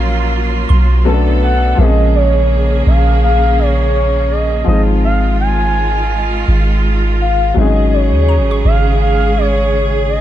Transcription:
Already playing: 808-style bass A#1, grand piano F#3 A#3 C#4 F4 A#4, string section F#3 A#3 F4, soft synth lead F5
0.69 808-style bass B1, synth pluck C6
1.05 string section D3 B3 A4, grand piano F#3 A3 B3 C#4 A4
1.14 grand piano D4
1.42 soft synth lead F#5
1.75 808-style bass A#1, string section C#3 A#3 G#4, grand piano F3 G#3 A#3, soft synth lead D#5
1.80 grand piano C4 G#4
1.87 grand piano C#4
2.15 soft synth lead C#5
2.87 808-style bass A#1, soft synth lead F5
3.23 soft synth lead F5
3.59 soft synth lead C#5
4.32 soft synth lead D#5
4.64 808-style bass G#1, string section D#3 G#3 F4, grand piano F3 G#3 C4, soft synth lead D#5
4.70 grand piano D#4 G#4
5.04 soft synth lead F5
5.40 soft synth lead G#5
6.48 808-style bass G#1
7.21 soft synth lead F5
7.50 grand piano F#3, soft synth lead F5
7.55 808-style bass G#1, string section C#3 G#3 G#4, grand piano G#3 C4 D#4, soft synth lead D#5
7.61 grand piano C#4 G#4
7.93 soft synth lead C#5
8.11 808-style bass D#2
8.29 synth pluck A#5
8.38 808-style bass G#1
8.51 synth pluck C#6
8.65 808-style bass G#1, soft synth lead F5
9.01 soft synth lead F5
9.38 soft synth lead C#5
10.09 soft synth lead D#5

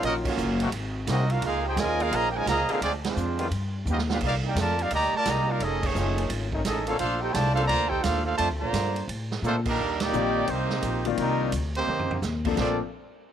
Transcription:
Already playing: trombone section D#3 F#3 C#4 F4
0.02 upright bass A#1, trombone section F#3 A#3 D#4, trumpet section C#4 F#4 A#4 D#5, ride
0.25 trombone section F#3 A#3 C#4, trumpet section A#3 F4 F#4 C#5, kick, crash
0.37 upright bass F#1, hi-hat pedal
0.60 trombone section C3 G#3 A#3 F#4, ride
0.71 upright bass G#1, ride
1.07 upright bass C2, trombone section C3 F#3 G#3 A#3 C4 D#4 F#4, trumpet section C4 F#4 A#4 D#5, snare, hi-hat pedal, ride
1.29 trumpet section D4 F#4 A#4 F5, trombone section F4, ride
1.41 upright bass C#2, trombone section G#3 A#3 F4, ride
1.46 trumpet section D#4 G#4 A#4 F5
1.63 trombone section G4
1.68 trumpet section D#4 G#4 C5 G5
1.76 upright bass D#2, trombone section A#2 D#3 F3 G#3 A#3 C#4 F4, trumpet section F4 A#4 D#5 G#5, snare, hi-hat pedal, ride
1.99 trombone section G#3 A#3 F4, trumpet section D#4 G#4 A#4 F5, ride
2.11 upright bass A#1, trombone section A#2 F3 A#3, trumpet section G#4 D#5 F5 A#5, ride
2.32 trombone section A#2 F3 G#3 A#3, trumpet section G5
2.36 trombone section D#3 C#4 D#4, trumpet section F4 A#4 D#5 G#5
2.46 upright bass C#2, trombone section A#2 F3 A#3, trumpet section G#4 D#5 F5 A#5, snare, hi-hat pedal, ride
2.69 trombone section D3 G#3 A#3 C4 F4 G#4, trumpet section D#4 G#4 A#4 F5, muted upright bass stroke, ride
2.81 upright bass D2, trombone section F3 G#3 D4, trumpet section C4 F4 G#4 D5, ride
3.04 trombone section F3 G#3 C4, trumpet section G#3 D4 F4 C5, snare, ride
3.16 upright bass F2, hi-hat pedal
3.39 trombone section D#3 G3 B3 F4, ride
3.51 upright bass G2, ride
3.85 upright bass D#2, trombone section F3 B3 D#4, floor tom, hi-hat pedal
3.91 trumpet section B3 F4 G4 D#5
3.98 snare
4.10 trombone section B3 D4 F4, trumpet section D4 G4 B4 F5, snare
4.21 upright bass C2, trombone section G3 A#3 F4, kick, crash
4.26 trumpet section D#4 A#4 D5 F5
4.44 trombone section A#3 D#4 G4, trumpet section D#4 A#4 D5 G5
4.55 upright bass F2, trombone section A3, snare, hi-hat pedal, ride
4.60 trumpet section F4 A#4 D5 A5
4.79 trombone section G3 A#3 F4, trumpet section D#4 A#4 D5 F5, ride
4.91 upright bass D2, trombone section D#3 G3 A#3, trumpet section G4 D5 D#5 A#5, ride
5.13 trombone section A3, trumpet section A#4, muted upright bass stroke
5.17 trumpet section F4 D5 A5
5.25 upright bass C2, trombone section D#3 G3 A#3, snare, hi-hat pedal, ride
5.30 trumpet section G4 D5 D#5 A#5
5.49 trombone section G3 A#3 F4, trumpet section D#4 A#4 D5 F5
5.60 upright bass F1, trombone section D#3 A3 D#4, trumpet section C#4 G#4 A4 D#5, ride
5.83 trombone section D#3 A3 C#4, trumpet section A3 D#4 G#4 C#5, kick, crash
5.95 upright bass F#1, trombone section D#3 A3 C#4 F4, hi-hat pedal
6.18 ride
6.30 upright bass G#1, ride
6.52 trombone section D#3 A3 C#4 D#4, kick
6.65 upright bass A1, trombone section D#3 A3 D#4, trumpet section C#4 G#4 A4 D#5, snare, hi-hat pedal, ride
6.86 trombone section D3 A3 A#3 C4 C#4 F4 A4, trumpet section D#4 A4 C#5 F5, ride
6.98 upright bass A#1, trombone section A3 D4 F4, trumpet section D4 A4 C5 F5, ride
7.20 trumpet section D#4 A4 C5 G5, trombone section G4
7.32 upright bass C2, trombone section D3 F3 A3, trumpet section F4 C5 D5 G5 A5, snare, hi-hat pedal, ride
7.54 trombone section A3 D4 F4, trumpet section D4 A4 C5 F5, ride
7.58 trombone section D3 A#3 C4 A4
7.67 upright bass D2, trombone section D3 F3 A#3, trumpet section F4 C5 D5 A#5, ride
7.89 trumpet section D#4 A4 C5 G5, trombone section G4, kick
8.01 upright bass D#2, trombone section A3 D4 F4, trumpet section D4 A4 C5 F5, snare, hi-hat pedal, ride
8.24 trombone section A3 D4 F4, trumpet section D4 A4 C5 F5
8.37 upright bass F2, trombone section D3 F3 A3, trumpet section F4 C5 D5 A5, ride
8.51 upright bass D2
8.59 upright bass A#1, trombone section D3 F3 A#3, trumpet section F4 C5 D5 A#5
8.73 upright bass G2, snare, hi-hat pedal, ride
8.96 ride
9.08 upright bass A2, ride
9.31 snare
9.42 upright bass A#2, trombone section D3 F3 A3 A#3 C4 A4, hi-hat pedal
9.46 trumpet section A3 D4 F4 C5
9.65 trombone section D#3 G3 A#3, trumpet section G3 D4 D#4 A#4, kick, crash
9.78 upright bass D#2
10.00 trombone section G3 A#3 D#4, trumpet section A#3 D#4 G4 D5, snare, ride
10.12 upright bass A#1, grand piano D#3 A#3 C4 G4 D5, hi-hat pedal
10.47 upright bass C2, trombone section C3 D#3 C4, trumpet section A#3 D#4 G4 C5, ride
10.70 snare
10.82 upright bass A#1, hi-hat pedal, ride
11.05 grand piano D#3 A#3 C4 F4 D5, ride
11.17 upright bass C2, trombone section D#3 G3 A#3, trumpet section G3 D4 D#4 A#4, ride
11.52 upright bass D2, hi-hat pedal, ride
11.75 trombone section C3 D#3 C4, trumpet section A#3 D#4 G4 C5, ride
11.87 upright bass F2, mid tom
11.99 floor tom
12.11 floor tom
12.22 upright bass D#2, snare, hi-hat pedal
12.45 grand piano F3 A#3 C4 D4 A4, kick, crash
12.57 upright bass A#1, trombone section A#2 F3 A3 D4, grand piano F3 A#3 C4 D4 A4, trumpet section C4 F4 A4 D5, kick, snare, crash

